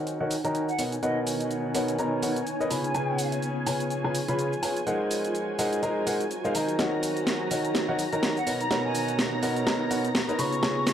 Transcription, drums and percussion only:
0.07 closed hi-hat, cabasa
0.31 open hi-hat, cabasa
0.45 closed hi-hat, cabasa
0.55 closed hi-hat, cabasa
0.69 cabasa
0.79 open hi-hat, cabasa
0.92 closed hi-hat, cabasa
1.03 closed hi-hat, cabasa
1.27 open hi-hat, cabasa
1.41 closed hi-hat, cabasa
1.51 closed hi-hat, cabasa
1.75 open hi-hat, cabasa
1.88 closed hi-hat, cabasa
1.99 closed hi-hat, cabasa
2.23 open hi-hat, cabasa
2.36 closed hi-hat, cabasa
2.47 closed hi-hat, cabasa
2.61 cabasa
2.71 open hi-hat, cabasa
2.84 closed hi-hat, cabasa
2.95 closed hi-hat, cabasa
3.18 open hi-hat, cabasa
3.32 closed hi-hat, cabasa
3.42 closed hi-hat, cabasa
3.67 open hi-hat, cabasa
3.80 closed hi-hat, cabasa
3.90 closed hi-hat, cabasa
4.15 open hi-hat, cabasa
4.28 closed hi-hat, cabasa
4.39 closed hi-hat, cabasa
4.53 cabasa
4.63 open hi-hat, cabasa
4.77 closed hi-hat, cabasa
4.87 closed hi-hat, cabasa
5.11 open hi-hat, cabasa
5.25 closed hi-hat, cabasa
5.35 closed hi-hat, cabasa
5.59 open hi-hat, cabasa
5.73 closed hi-hat, cabasa
5.83 closed hi-hat, cabasa
6.07 open hi-hat, cabasa
6.21 closed hi-hat, cabasa
6.31 closed hi-hat, cabasa
6.45 cabasa
6.55 open hi-hat, cabasa
6.69 closed hi-hat, cabasa
6.79 snare, closed hi-hat, cabasa
7.03 open hi-hat, cabasa
7.17 closed hi-hat, cabasa
7.27 snare, closed hi-hat, cabasa
7.51 open hi-hat, cabasa
7.65 closed hi-hat, cabasa
7.75 snare, closed hi-hat, cabasa
7.99 open hi-hat, cabasa
8.13 closed hi-hat, cabasa
8.23 snare, closed hi-hat, cabasa
8.37 cabasa
8.47 open hi-hat, cabasa
8.61 closed hi-hat, cabasa
8.71 snare, closed hi-hat, cabasa
8.95 open hi-hat, cabasa
9.08 closed hi-hat, cabasa
9.19 snare, closed hi-hat, cabasa
9.43 open hi-hat, cabasa
9.57 closed hi-hat, cabasa
9.67 snare, closed hi-hat, cabasa
9.91 open hi-hat, cabasa
10.05 closed hi-hat, cabasa
10.15 snare, closed hi-hat, cabasa
10.29 cabasa
10.39 open hi-hat, cabasa
10.53 closed hi-hat, cabasa
10.63 snare, closed hi-hat, cabasa
10.87 snare, open hi-hat, cabasa

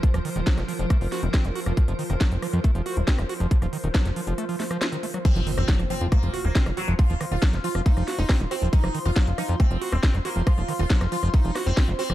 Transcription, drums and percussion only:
0.03 kick, closed hi-hat
0.14 cross-stick, closed hi-hat
0.25 open hi-hat
0.36 closed hi-hat
0.47 kick, snare, closed hi-hat
0.58 cross-stick, snare, closed hi-hat
0.68 open hi-hat
0.79 closed hi-hat
0.90 kick, cross-stick, closed hi-hat
1.01 open hi-hat
1.12 snare, open hi-hat
1.23 closed hi-hat
1.34 kick, cross-stick, snare, closed hi-hat
1.45 closed hi-hat
1.55 open hi-hat
1.66 cross-stick, closed hi-hat
1.77 kick, closed hi-hat
1.88 closed hi-hat
1.99 open hi-hat
2.10 cross-stick, closed hi-hat
2.21 kick, snare, closed hi-hat
2.32 closed hi-hat
2.42 cross-stick, open hi-hat
2.53 closed hi-hat
2.64 kick, closed hi-hat
2.75 closed hi-hat
2.86 cross-stick, open hi-hat
2.97 closed hi-hat
3.08 kick, snare, closed hi-hat
3.19 cross-stick, closed hi-hat
3.29 open hi-hat
3.40 closed hi-hat
3.51 kick, closed hi-hat
3.62 cross-stick, closed hi-hat
3.73 open hi-hat
3.84 closed hi-hat
3.95 kick, cross-stick, snare, closed hi-hat
4.05 snare, closed hi-hat
4.16 open hi-hat
4.27 closed hi-hat
4.38 cross-stick, closed hi-hat
4.49 open hi-hat
4.60 snare, open hi-hat
4.71 cross-stick, closed hi-hat
4.82 snare, closed hi-hat
4.92 closed hi-hat
5.03 open hi-hat
5.14 cross-stick, closed hi-hat
5.25 kick, cross-stick, closed hi-hat, crash
5.36 closed hi-hat
5.47 open hi-hat
5.58 cross-stick, closed hi-hat
5.68 kick, snare, closed hi-hat
5.79 cross-stick, closed hi-hat
5.90 open hi-hat
6.01 closed hi-hat
6.12 kick, cross-stick, closed hi-hat
6.23 closed hi-hat
6.34 cross-stick, open hi-hat
6.45 closed hi-hat
6.55 kick, snare, closed hi-hat
6.66 cross-stick, closed hi-hat
6.77 open hi-hat
6.88 cross-stick
6.99 kick, closed hi-hat
7.10 closed hi-hat
7.21 cross-stick, open hi-hat
7.32 closed hi-hat
7.42 kick, cross-stick, snare, closed hi-hat
7.53 snare, closed hi-hat
7.64 open hi-hat
7.75 cross-stick, closed hi-hat
7.86 kick, closed hi-hat
7.97 cross-stick, closed hi-hat
8.08 snare, open hi-hat
8.19 closed hi-hat
8.29 kick, cross-stick, snare, open hi-hat
8.40 closed hi-hat
8.51 cross-stick, open hi-hat
8.62 closed hi-hat
8.73 kick, closed hi-hat
8.84 cross-stick, closed hi-hat
8.95 open hi-hat
9.05 cross-stick, closed hi-hat
9.16 kick, snare, closed hi-hat
9.27 closed hi-hat
9.38 cross-stick, open hi-hat
9.49 closed hi-hat
9.60 kick, cross-stick, closed hi-hat
9.71 closed hi-hat
9.82 open hi-hat
9.92 cross-stick, closed hi-hat
10.03 kick, snare, closed hi-hat
10.14 cross-stick, closed hi-hat
10.25 open hi-hat
10.47 kick, cross-stick, closed hi-hat
10.58 closed hi-hat
10.69 cross-stick, open hi-hat
10.79 closed hi-hat
10.90 kick, snare, closed hi-hat
11.01 cross-stick, snare, closed hi-hat
11.12 open hi-hat
11.23 cross-stick, closed hi-hat
11.34 kick, closed hi-hat
11.45 closed hi-hat
11.55 cross-stick, snare, open hi-hat
11.66 closed hi-hat
11.77 kick, cross-stick, snare, open hi-hat
11.88 closed hi-hat
11.99 open hi-hat
12.10 cross-stick, closed hi-hat

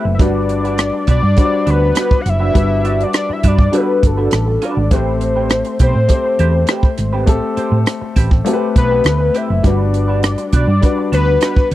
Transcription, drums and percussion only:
0.19 kick, closed hi-hat
0.49 closed hi-hat
0.65 closed hi-hat
0.78 cross-stick, closed hi-hat
1.07 kick, closed hi-hat
1.37 kick, closed hi-hat
1.67 closed hi-hat
1.95 cross-stick, closed hi-hat
2.11 kick
2.26 cross-stick, closed hi-hat
2.55 kick, closed hi-hat
2.85 closed hi-hat
3.01 closed hi-hat
3.13 cross-stick, closed hi-hat
3.43 kick, closed hi-hat
3.58 kick
3.73 closed hi-hat
4.03 kick, closed hi-hat
4.31 cross-stick, closed hi-hat
4.62 closed hi-hat
4.91 kick, closed hi-hat
5.21 closed hi-hat
5.50 cross-stick, closed hi-hat
5.65 closed hi-hat
5.79 kick, closed hi-hat
6.09 kick, closed hi-hat
6.39 closed hi-hat
6.67 cross-stick, closed hi-hat
6.83 kick
6.98 cross-stick, closed hi-hat
7.27 kick, closed hi-hat
7.57 closed hi-hat
7.86 cross-stick, closed hi-hat
8.16 kick, closed hi-hat
8.31 kick
8.46 closed hi-hat
8.76 kick, closed hi-hat
9.04 cross-stick, closed hi-hat
9.35 cross-stick, closed hi-hat
9.64 kick, closed hi-hat
9.94 closed hi-hat
10.23 cross-stick, closed hi-hat
10.38 closed hi-hat
10.53 kick, closed hi-hat
10.83 kick, closed hi-hat
11.13 closed hi-hat
11.41 cross-stick, closed hi-hat
11.56 kick

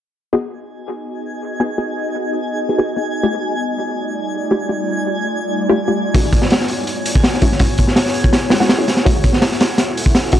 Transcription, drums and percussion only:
6.15 kick, open hi-hat
6.33 kick, open hi-hat
6.42 snare
6.50 snare, open hi-hat
6.60 snare
6.68 open hi-hat
6.87 open hi-hat
7.06 open hi-hat
7.15 kick
7.24 snare, open hi-hat
7.34 snare
7.42 kick, open hi-hat
7.52 snare
7.59 kick, open hi-hat
7.78 kick, open hi-hat
7.88 snare
7.96 snare, open hi-hat
8.06 snare
8.14 open hi-hat
8.24 kick
8.33 snare, open hi-hat
8.50 snare, open hi-hat
8.61 snare
8.69 snare, open hi-hat
8.88 snare, open hi-hat
8.97 snare
9.06 kick, open hi-hat
9.24 kick, open hi-hat
9.33 snare
9.42 snare, open hi-hat
9.52 snare
9.61 snare, open hi-hat
9.78 snare, open hi-hat
9.97 open hi-hat
10.06 kick
10.15 snare, open hi-hat
10.25 snare
10.32 kick, open hi-hat

